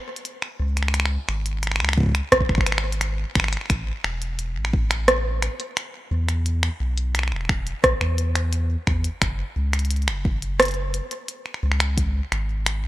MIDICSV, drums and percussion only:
0, 0, Header, 1, 2, 480
1, 0, Start_track
1, 0, Key_signature, 3, "major"
1, 0, Tempo, 689655
1, 655, Time_signature, 4, 2, 24, 8
1, 8963, End_track
2, 0, Start_track
2, 0, Title_t, "Drums"
2, 114, Note_on_c, 9, 42, 52
2, 175, Note_off_c, 9, 42, 0
2, 175, Note_on_c, 9, 42, 69
2, 244, Note_off_c, 9, 42, 0
2, 295, Note_on_c, 9, 26, 50
2, 364, Note_off_c, 9, 26, 0
2, 536, Note_on_c, 9, 26, 33
2, 536, Note_on_c, 9, 42, 53
2, 575, Note_off_c, 9, 26, 0
2, 575, Note_on_c, 9, 26, 40
2, 605, Note_off_c, 9, 42, 0
2, 615, Note_off_c, 9, 26, 0
2, 615, Note_on_c, 9, 26, 46
2, 654, Note_off_c, 9, 26, 0
2, 654, Note_on_c, 9, 26, 54
2, 654, Note_on_c, 9, 42, 63
2, 694, Note_off_c, 9, 26, 0
2, 694, Note_on_c, 9, 26, 60
2, 724, Note_off_c, 9, 42, 0
2, 734, Note_off_c, 9, 26, 0
2, 734, Note_on_c, 9, 26, 66
2, 804, Note_off_c, 9, 26, 0
2, 895, Note_on_c, 9, 26, 46
2, 965, Note_off_c, 9, 26, 0
2, 1014, Note_on_c, 9, 42, 53
2, 1084, Note_off_c, 9, 42, 0
2, 1134, Note_on_c, 9, 26, 33
2, 1134, Note_on_c, 9, 42, 63
2, 1164, Note_off_c, 9, 26, 0
2, 1164, Note_on_c, 9, 26, 38
2, 1194, Note_off_c, 9, 26, 0
2, 1194, Note_on_c, 9, 26, 44
2, 1203, Note_off_c, 9, 42, 0
2, 1224, Note_off_c, 9, 26, 0
2, 1224, Note_on_c, 9, 26, 47
2, 1254, Note_off_c, 9, 26, 0
2, 1254, Note_on_c, 9, 26, 50
2, 1285, Note_off_c, 9, 26, 0
2, 1285, Note_on_c, 9, 26, 55
2, 1314, Note_off_c, 9, 26, 0
2, 1314, Note_on_c, 9, 26, 60
2, 1345, Note_off_c, 9, 26, 0
2, 1345, Note_on_c, 9, 26, 65
2, 1375, Note_on_c, 9, 36, 105
2, 1394, Note_off_c, 9, 36, 0
2, 1394, Note_on_c, 9, 36, 83
2, 1414, Note_off_c, 9, 26, 0
2, 1414, Note_off_c, 9, 36, 0
2, 1414, Note_on_c, 9, 36, 67
2, 1434, Note_off_c, 9, 36, 0
2, 1434, Note_on_c, 9, 36, 57
2, 1455, Note_off_c, 9, 36, 0
2, 1455, Note_on_c, 9, 36, 46
2, 1474, Note_off_c, 9, 36, 0
2, 1474, Note_on_c, 9, 36, 38
2, 1495, Note_on_c, 9, 26, 49
2, 1495, Note_on_c, 9, 42, 50
2, 1544, Note_off_c, 9, 36, 0
2, 1564, Note_off_c, 9, 26, 0
2, 1564, Note_off_c, 9, 42, 0
2, 1615, Note_on_c, 9, 36, 48
2, 1615, Note_on_c, 9, 37, 120
2, 1615, Note_on_c, 9, 42, 61
2, 1674, Note_off_c, 9, 36, 0
2, 1674, Note_on_c, 9, 36, 63
2, 1685, Note_off_c, 9, 37, 0
2, 1685, Note_off_c, 9, 42, 0
2, 1734, Note_off_c, 9, 36, 0
2, 1734, Note_on_c, 9, 36, 76
2, 1735, Note_on_c, 9, 26, 33
2, 1775, Note_off_c, 9, 26, 0
2, 1775, Note_on_c, 9, 26, 37
2, 1794, Note_off_c, 9, 36, 0
2, 1794, Note_on_c, 9, 36, 87
2, 1815, Note_off_c, 9, 26, 0
2, 1815, Note_on_c, 9, 26, 46
2, 1855, Note_off_c, 9, 26, 0
2, 1855, Note_on_c, 9, 26, 53
2, 1855, Note_on_c, 9, 42, 60
2, 1864, Note_off_c, 9, 36, 0
2, 1895, Note_off_c, 9, 26, 0
2, 1895, Note_on_c, 9, 26, 58
2, 1924, Note_off_c, 9, 42, 0
2, 1935, Note_off_c, 9, 26, 0
2, 1935, Note_on_c, 9, 26, 66
2, 2005, Note_off_c, 9, 26, 0
2, 2036, Note_on_c, 9, 42, 49
2, 2095, Note_off_c, 9, 42, 0
2, 2095, Note_on_c, 9, 26, 53
2, 2095, Note_on_c, 9, 42, 67
2, 2165, Note_off_c, 9, 26, 0
2, 2165, Note_off_c, 9, 42, 0
2, 2335, Note_on_c, 9, 26, 72
2, 2335, Note_on_c, 9, 36, 82
2, 2365, Note_off_c, 9, 26, 0
2, 2365, Note_on_c, 9, 26, 59
2, 2395, Note_off_c, 9, 26, 0
2, 2395, Note_on_c, 9, 26, 49
2, 2404, Note_off_c, 9, 36, 0
2, 2425, Note_off_c, 9, 26, 0
2, 2425, Note_on_c, 9, 26, 39
2, 2454, Note_off_c, 9, 26, 0
2, 2454, Note_on_c, 9, 26, 30
2, 2454, Note_on_c, 9, 42, 51
2, 2485, Note_off_c, 9, 26, 0
2, 2485, Note_on_c, 9, 26, 27
2, 2515, Note_off_c, 9, 26, 0
2, 2515, Note_on_c, 9, 26, 21
2, 2524, Note_off_c, 9, 42, 0
2, 2545, Note_off_c, 9, 26, 0
2, 2545, Note_on_c, 9, 26, 18
2, 2574, Note_off_c, 9, 26, 0
2, 2574, Note_on_c, 9, 26, 50
2, 2574, Note_on_c, 9, 42, 62
2, 2575, Note_on_c, 9, 36, 84
2, 2644, Note_off_c, 9, 26, 0
2, 2644, Note_off_c, 9, 36, 0
2, 2644, Note_off_c, 9, 42, 0
2, 2815, Note_on_c, 9, 26, 73
2, 2884, Note_off_c, 9, 26, 0
2, 2935, Note_on_c, 9, 42, 48
2, 3004, Note_off_c, 9, 42, 0
2, 3054, Note_on_c, 9, 42, 64
2, 3124, Note_off_c, 9, 42, 0
2, 3235, Note_on_c, 9, 26, 48
2, 3295, Note_on_c, 9, 36, 102
2, 3305, Note_off_c, 9, 26, 0
2, 3365, Note_off_c, 9, 36, 0
2, 3415, Note_on_c, 9, 26, 75
2, 3415, Note_on_c, 9, 42, 49
2, 3485, Note_off_c, 9, 26, 0
2, 3485, Note_off_c, 9, 42, 0
2, 3536, Note_on_c, 9, 37, 111
2, 3536, Note_on_c, 9, 42, 61
2, 3605, Note_off_c, 9, 37, 0
2, 3605, Note_off_c, 9, 42, 0
2, 3775, Note_on_c, 9, 26, 52
2, 3775, Note_on_c, 9, 42, 58
2, 3845, Note_off_c, 9, 26, 0
2, 3845, Note_off_c, 9, 42, 0
2, 3895, Note_on_c, 9, 42, 51
2, 3965, Note_off_c, 9, 42, 0
2, 4015, Note_on_c, 9, 26, 77
2, 4015, Note_on_c, 9, 42, 66
2, 4085, Note_off_c, 9, 26, 0
2, 4085, Note_off_c, 9, 42, 0
2, 4375, Note_on_c, 9, 26, 49
2, 4375, Note_on_c, 9, 42, 50
2, 4444, Note_off_c, 9, 26, 0
2, 4444, Note_off_c, 9, 42, 0
2, 4495, Note_on_c, 9, 42, 62
2, 4565, Note_off_c, 9, 42, 0
2, 4615, Note_on_c, 9, 26, 80
2, 4684, Note_off_c, 9, 26, 0
2, 4855, Note_on_c, 9, 42, 51
2, 4924, Note_off_c, 9, 42, 0
2, 4975, Note_on_c, 9, 26, 51
2, 4975, Note_on_c, 9, 42, 64
2, 5005, Note_off_c, 9, 26, 0
2, 5005, Note_on_c, 9, 26, 40
2, 5035, Note_off_c, 9, 26, 0
2, 5035, Note_on_c, 9, 26, 33
2, 5044, Note_off_c, 9, 42, 0
2, 5065, Note_off_c, 9, 26, 0
2, 5065, Note_on_c, 9, 26, 27
2, 5095, Note_off_c, 9, 26, 0
2, 5095, Note_on_c, 9, 26, 23
2, 5125, Note_off_c, 9, 26, 0
2, 5125, Note_on_c, 9, 26, 19
2, 5156, Note_off_c, 9, 26, 0
2, 5156, Note_on_c, 9, 26, 15
2, 5186, Note_off_c, 9, 26, 0
2, 5186, Note_on_c, 9, 26, 12
2, 5215, Note_off_c, 9, 26, 0
2, 5215, Note_on_c, 9, 26, 79
2, 5215, Note_on_c, 9, 36, 101
2, 5284, Note_off_c, 9, 36, 0
2, 5285, Note_off_c, 9, 26, 0
2, 5336, Note_on_c, 9, 42, 49
2, 5406, Note_off_c, 9, 42, 0
2, 5455, Note_on_c, 9, 36, 99
2, 5455, Note_on_c, 9, 37, 116
2, 5455, Note_on_c, 9, 42, 59
2, 5524, Note_off_c, 9, 36, 0
2, 5525, Note_off_c, 9, 37, 0
2, 5525, Note_off_c, 9, 42, 0
2, 5576, Note_on_c, 9, 26, 50
2, 5645, Note_off_c, 9, 26, 0
2, 5695, Note_on_c, 9, 42, 59
2, 5764, Note_off_c, 9, 42, 0
2, 5815, Note_on_c, 9, 26, 75
2, 5815, Note_on_c, 9, 42, 49
2, 5884, Note_off_c, 9, 26, 0
2, 5884, Note_off_c, 9, 42, 0
2, 5934, Note_on_c, 9, 42, 66
2, 6004, Note_off_c, 9, 42, 0
2, 6174, Note_on_c, 9, 36, 77
2, 6175, Note_on_c, 9, 26, 53
2, 6244, Note_off_c, 9, 36, 0
2, 6245, Note_off_c, 9, 26, 0
2, 6295, Note_on_c, 9, 42, 51
2, 6364, Note_off_c, 9, 42, 0
2, 6414, Note_on_c, 9, 36, 78
2, 6415, Note_on_c, 9, 26, 82
2, 6415, Note_on_c, 9, 42, 64
2, 6484, Note_off_c, 9, 26, 0
2, 6484, Note_off_c, 9, 36, 0
2, 6484, Note_off_c, 9, 42, 0
2, 6774, Note_on_c, 9, 26, 52
2, 6774, Note_on_c, 9, 42, 47
2, 6815, Note_off_c, 9, 42, 0
2, 6815, Note_on_c, 9, 42, 40
2, 6844, Note_off_c, 9, 26, 0
2, 6854, Note_off_c, 9, 42, 0
2, 6854, Note_on_c, 9, 42, 32
2, 6894, Note_off_c, 9, 42, 0
2, 6894, Note_on_c, 9, 42, 62
2, 6934, Note_off_c, 9, 42, 0
2, 6934, Note_on_c, 9, 42, 22
2, 6974, Note_off_c, 9, 42, 0
2, 6974, Note_on_c, 9, 42, 18
2, 7014, Note_on_c, 9, 26, 81
2, 7044, Note_off_c, 9, 42, 0
2, 7084, Note_off_c, 9, 26, 0
2, 7134, Note_on_c, 9, 36, 99
2, 7204, Note_off_c, 9, 36, 0
2, 7255, Note_on_c, 9, 42, 50
2, 7324, Note_off_c, 9, 42, 0
2, 7375, Note_on_c, 9, 26, 51
2, 7375, Note_on_c, 9, 37, 107
2, 7375, Note_on_c, 9, 42, 62
2, 7395, Note_off_c, 9, 42, 0
2, 7395, Note_on_c, 9, 42, 48
2, 7435, Note_off_c, 9, 42, 0
2, 7435, Note_on_c, 9, 42, 34
2, 7445, Note_off_c, 9, 26, 0
2, 7445, Note_off_c, 9, 37, 0
2, 7454, Note_off_c, 9, 42, 0
2, 7454, Note_on_c, 9, 42, 27
2, 7475, Note_off_c, 9, 42, 0
2, 7475, Note_on_c, 9, 42, 22
2, 7544, Note_off_c, 9, 42, 0
2, 7614, Note_on_c, 9, 42, 61
2, 7684, Note_off_c, 9, 42, 0
2, 7734, Note_on_c, 9, 42, 50
2, 7803, Note_off_c, 9, 42, 0
2, 7854, Note_on_c, 9, 42, 70
2, 7923, Note_off_c, 9, 42, 0
2, 7974, Note_on_c, 9, 26, 23
2, 8034, Note_off_c, 9, 26, 0
2, 8034, Note_on_c, 9, 26, 30
2, 8104, Note_off_c, 9, 26, 0
2, 8154, Note_on_c, 9, 26, 46
2, 8215, Note_off_c, 9, 26, 0
2, 8215, Note_on_c, 9, 26, 81
2, 8215, Note_on_c, 9, 42, 51
2, 8284, Note_off_c, 9, 26, 0
2, 8284, Note_off_c, 9, 42, 0
2, 8334, Note_on_c, 9, 36, 77
2, 8335, Note_on_c, 9, 42, 68
2, 8404, Note_off_c, 9, 36, 0
2, 8405, Note_off_c, 9, 42, 0
2, 8575, Note_on_c, 9, 26, 53
2, 8575, Note_on_c, 9, 42, 38
2, 8645, Note_off_c, 9, 26, 0
2, 8645, Note_off_c, 9, 42, 0
2, 8814, Note_on_c, 9, 26, 83
2, 8814, Note_on_c, 9, 42, 64
2, 8884, Note_off_c, 9, 26, 0
2, 8884, Note_off_c, 9, 42, 0
2, 8963, End_track
0, 0, End_of_file